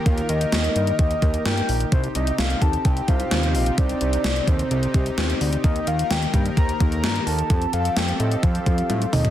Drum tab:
HH |xxxxxxxxxxxxxxox|xxxxxxxxxxxxxxox|xxxxxxxxxxxxxxox|xxxxxxxxxxxxxxox|
SD |----o-------o---|----o-------o---|----o-------o---|----o-------o---|
T1 |----------------|----------------|----------------|----------------|
T2 |----------------|----------------|----------------|----------------|
FT |----------------|----------------|----------------|----------------|
BD |o-------o-o-----|o-----o-o-o-----|o-----o---o-----|o-----o-o-o-----|

HH |xxxxxxxxxxxxxxox|
SD |----o-----------|
T1 |------------o---|
T2 |--------------o-|
FT |---------------o|
BD |o-------o-o-----|